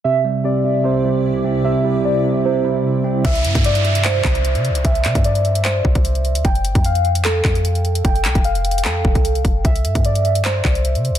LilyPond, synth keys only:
\new Staff \with { instrumentName = "Synth keys" } { \time 4/4 \key c \major \tempo 4 = 150 e''4 d''4 c''2 | e''4 d''4 c''2 | e''4 d''4 c''2 | e''4 d''4 c''2 |
g''4 f''4 a'2 | g''4 f''4 a'2 | e''4 d''4 c''2 | }